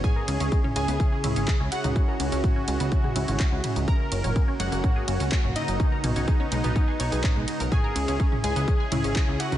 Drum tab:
RD |--x---x---x---x-|--x---x---x---x-|--x---x---x---x-|--x---x---x---x-|
HH |x-xxx-xxx-xxx-xx|x-xxx-xxx-xxx-xx|x-xxx-xxx-xxx-xx|x-xxx-xxx-xxx-xx|
CP |------------x---|------------x---|------------x---|------------x---|
T2 |o----o----o----o|----o----o----o-|---o----o----o--|--o----o----o---|
BD |o---o---o---o---|o---o---o---o---|o---o---o---o---|o---o---o---o---|

RD |--x---x---x---x-|
HH |x-xxx-xxx-xxx-xx|
CP |------------x---|
T2 |o----o----o----o|
BD |o---o---o---o---|